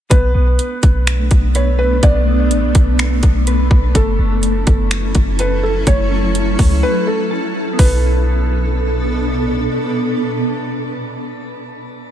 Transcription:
0.10 0.34 B1 loud
0.10 3.91 A3 medium
0.10 0.33 B3 medium
0.10 3.91 B3 medium
0.10 3.91 D4 medium
0.10 1.03 B4 medium
0.10 kick loud
0.10 closed hi-hat medium
0.34 0.58 B1 loud
0.34 1.79 B3 medium
0.59 closed hi-hat medium
0.83 1.29 B1 loud
0.83 kick loud
0.83 closed hi-hat medium
1.07 finger snap loud
1.07 closed hi-hat medium
1.31 2.00 B1 loud
1.31 kick medium
1.31 closed hi-hat medium
1.55 2.99 B4 medium
1.55 1.78 C#5 medium
1.55 closed hi-hat medium
1.79 2.02 B4 medium
2.03 2.52 B1 loud
2.03 2.26 B3 loud
2.03 2.95 D5 medium
2.03 kick loud
2.03 closed hi-hat medium
2.27 3.71 B3 medium
2.51 2.65 A1 loud
2.51 closed hi-hat medium
2.63 2.74 B1 loud
2.75 3.21 B1 loud
2.75 kick loud
2.75 closed hi-hat medium
2.99 finger snap loud
2.99 closed hi-hat medium
3.23 3.69 B1 loud
3.23 kick medium
3.23 closed hi-hat medium
3.47 3.95 B4 medium
3.47 closed hi-hat medium
3.71 3.94 B1 loud
3.71 kick loud
3.95 4.18 F#1 loud
3.95 7.75 F#3 medium
3.95 4.18 A3 medium
3.95 7.75 C#4 medium
3.95 7.75 E4 medium
3.95 7.75 A4 medium
3.95 4.87 A4 medium
3.95 kick loud
3.95 closed hi-hat medium
4.19 4.65 F#1 loud
4.19 5.63 A3 medium
4.43 closed hi-hat medium
4.67 5.13 F#1 loud
4.67 kick loud
4.67 closed hi-hat medium
4.91 finger snap loud
4.91 closed hi-hat medium
5.15 5.84 F#1 loud
5.15 kick medium
5.15 closed hi-hat medium
5.39 6.83 A4 medium
5.39 5.62 B4 medium
5.39 closed hi-hat medium
5.63 5.86 A4 medium
5.87 6.56 F#1 loud
5.87 6.10 A3 medium
5.87 6.79 C#5 medium
5.87 kick loud
5.87 closed hi-hat medium
6.11 7.55 A3 medium
6.35 closed hi-hat medium
6.59 6.82 C#2 loud
6.59 kick loud
6.59 open hi-hat medium
6.83 7.06 B4 medium
7.07 7.30 A4 medium
7.31 7.79 A4 medium
7.73 11.45 B3 medium
7.79 9.67 B1 loud
7.79 11.51 B2 medium
7.79 11.51 B3 medium
7.79 11.51 D4 medium
7.79 11.51 A4 medium
7.79 9.19 B4 medium
7.79 kick loud
7.79 open hi-hat medium
7.85 11.57 A4 medium

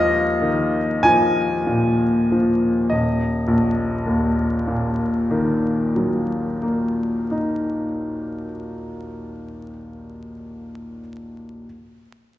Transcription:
0.00 2.87 D#2 medium
0.00 0.80 F3 medium
0.00 1.04 D#5 loud
0.00 2.96 F5 loud
0.42 1.05 D#3 medium
1.03 2.04 F3 medium
1.03 2.91 G#5 loud
1.67 2.69 A#2 medium
2.32 2.92 F3 medium
2.90 7.29 D#1 medium
2.90 7.27 D#5 medium
3.48 7.85 A#1 medium
4.06 8.43 D#2 medium
4.68 9.05 A#2 medium
5.31 9.68 D#3 medium
5.96 10.33 F#3 medium
6.63 10.99 A#3 medium
7.31 10.99 D#4 medium

